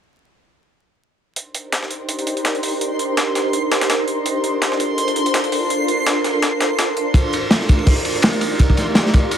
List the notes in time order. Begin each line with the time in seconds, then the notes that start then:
1.36 C6, closed hi-hat
1.54 closed hi-hat
1.72 snare, closed hi-hat
1.82 snare
1.91 closed hi-hat
2.09 closed hi-hat
2.19 closed hi-hat
2.27 closed hi-hat
2.37 closed hi-hat
2.45 snare, closed hi-hat
2.55 closed hi-hat
2.63 open hi-hat
2.81 closed hi-hat
2.99 closed hi-hat
3.17 snare, closed hi-hat
3.35 snare, closed hi-hat
3.53 closed hi-hat
3.71 snare, closed hi-hat
3.81 snare, closed hi-hat
3.90 snare, closed hi-hat
4.08 closed hi-hat
4.26 closed hi-hat
4.44 closed hi-hat
4.62 snare, closed hi-hat
4.72 snare
4.80 closed hi-hat
4.98 closed hi-hat
5.08 closed hi-hat
5.16 closed hi-hat
5.26 closed hi-hat
5.34 snare, closed hi-hat
5.44 closed hi-hat
5.52 open hi-hat
5.70 closed hi-hat
5.88 closed hi-hat
6.06 snare, closed hi-hat
6.24 snare, closed hi-hat
6.42 snare, closed hi-hat
6.60 snare, closed hi-hat
6.79 snare, closed hi-hat
6.97 closed hi-hat
7.14 kick, closed hi-hat, ride
7.33 closed hi-hat, ride
7.51 snare, closed hi-hat, ride
7.60 snare
7.69 kick, closed hi-hat, ride
7.79 ride
7.87 kick, closed hi-hat, open hi-hat
7.97 closed hi-hat
8.05 closed hi-hat, ride
8.15 closed hi-hat, ride
8.22 snare, closed hi-hat, ride
8.33 closed hi-hat
8.41 open hi-hat, ride
8.59 kick, closed hi-hat, ride
8.70 kick
8.77 snare, closed hi-hat, ride
8.95 snare, closed hi-hat, ride
9.06 snare
9.14 kick, snare, closed hi-hat, ride
9.31 closed hi-hat, ride